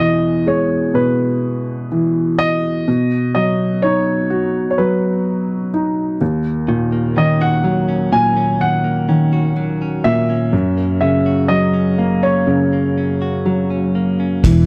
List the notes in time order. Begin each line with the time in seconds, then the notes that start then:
Already playing: E2 B2 D#5
0.00 E3
0.46 G#3 C#5
0.94 B2 B4
1.92 E3
2.39 D#5
2.88 B2
3.35 F#3 D#5
3.82 D#4 C#5
4.30 F#4
4.71 C#5
4.78 F#3 B4
5.74 D#4
6.21 D#2
6.68 A#2 D#3
6.92 A#3
7.16 D#3 C#4 D#5
7.41 F#4 F#5
7.64 F#3
7.88 C#4
8.12 A#2 A#3 G#5
8.37 C#4
8.61 D#3 F#5
8.84 A#3
9.08 D#3 C#4
9.33 F#4
9.57 F#3
9.82 C#4
10.04 A#2 A#3 E5
10.30 C#4
10.53 F#2
10.78 A#3
11.01 C#3 C#4 E5
11.26 F#4
11.48 F#3 D#5
11.74 C#4
11.98 A#3
12.23 C#4 C#5
12.47 F#2 C#3
12.73 A#3
12.98 C#4
13.22 F#4
13.45 F#3
13.70 C#4
13.95 A#3
14.20 C#4
14.44 E1 E3, kick, floor tom, crash